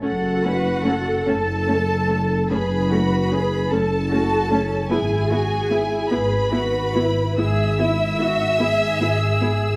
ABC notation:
X:1
M:12/8
L:1/8
Q:3/8=49
K:F#m
V:1 name="Violin section"
f3 a3 b3 a3 | g3 b3 e'6 |]
V:2 name="Violin section"
F3 A3 B3 A3 | G3 B3 e6 |]
V:3 name="Cello section"
A B A4 G F G A F C | E F E G F E G E F G3 |]
V:4 name="Viola section"
[A,C] [A,C] [A,C] [A,C] [A,C] [A,C] [A,C] [A,C] [A,C] [A,C] [A,C] [A,C] | [B,E] [B,E] [B,E] [B,E] [B,E] [B,E] [B,E] [B,E] [B,E] [B,E] [B,E] [B,E] |]
V:5 name="Double bass section" clef=bass
F,,,3 F,,,3 F,,,3 F,,,3 | G,,,3 G,,,3 G,,,3 G,,,3 |]